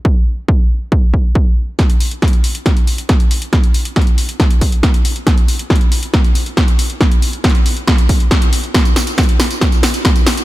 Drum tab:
HH |--------------------------------|x-x-o-x-xxx-o-x-x-x-o-x-x-x-o-x-|x-x-o-x-xxx-o-x-x-x-o-x-x-x-o-x-|x-x-o-x-xxx-o-x-x-x-o-x-x-x-o-x-|
TB |--------------------------------|--------------------------------|--------------------------------|--------------------------------|
SD |--------------------------------|o-------o-------o-------o-------|o-------o-------o-------o-------|o-------o-------o-------o-------|
BD |o-------o-------o---o---o-------|o-------o-------o-------o-------|o-------o-------o---o---o-------|o-------o-------o-------o-------|

HH |x-x-o-x-xxx-o-x-x-x-o-x-x-x-o-x-|x-x-o-x-xxx-o-x-x-x-o-x-x-x-o-x-|
TB |--------------------------------|x-x-x-x-x---x-x-x-x-x-x-x-x-x-x-|
SD |o-------o-------o-------o-------|o---o---o---o---o---o---o---o---|
BD |o-------o-------o---o---o-------|o-------o-------o-------o-------|